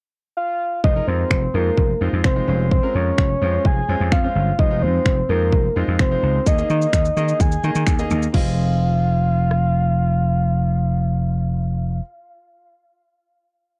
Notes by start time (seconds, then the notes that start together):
0.37 F5
0.84 F1 G#3 D#4 F4 C5 D#5, kick
0.96 G#3 D#4 F4 A#4
1.07 F2 C5
1.30 F1, finger snap, kick
1.54 F2 G#3 D#4 F4 A#4 C5
1.77 F1, kick
2.01 F2 G#3 D#4 F4 C5
2.13 F2
2.24 F1 C5, finger snap, kick
2.36 G#3 D#4 F4 C5
2.47 F1 G#3 C#4 F4 C5
2.71 C5, kick
2.83 G#3 C#4 F4 A#4
2.95 F2 C#5
3.18 F1, finger snap, kick
3.42 F2 G#3 C#4 F4 C5
3.65 F1 G#5, kick
3.89 F2 G#3 C#4 F4 C5
4.00 F2
4.12 F2 F5, finger snap, kick
4.24 G#3 C#4 F4 C5
4.35 G1
4.59 F1 G#3 D#4 F4 C5 D#5, kick
4.70 G#3 D#4 F4 C5
4.82 F2 C5
5.06 F1, finger snap, kick
5.29 F2 G#3 D#4 F4 A#4 C5
5.52 F1, kick
5.76 F2 G#3 D#4 F4 C5
5.88 F2
5.99 F1 C5, finger snap, kick
6.11 G#3 D#4 F4 C5
6.23 C#2
6.46 D#2 A#3 D#4 G#4 D#5, kick, shaker
6.58 A#3 D#4 G#4 D#5, shaker
6.70 D#3 D#5, shaker
6.82 shaker
6.93 D#2, finger snap, kick, shaker
7.05 shaker
7.17 D#3 A#3 D#4 G#4 D#5, shaker
7.28 shaker
7.40 D#2 G#5, kick, shaker
7.52 shaker
7.64 D#3 A#3 D#4 G#4 D#5, shaker
7.75 D#3, shaker
7.87 D#2, finger snap, kick, shaker
7.99 A#3 D#4 G#4 D#5, shaker
8.11 D#2, shaker
8.22 shaker
8.32 F1 C4 F4 G#4 F5, kick, crash
8.36 D#5
9.51 cross-stick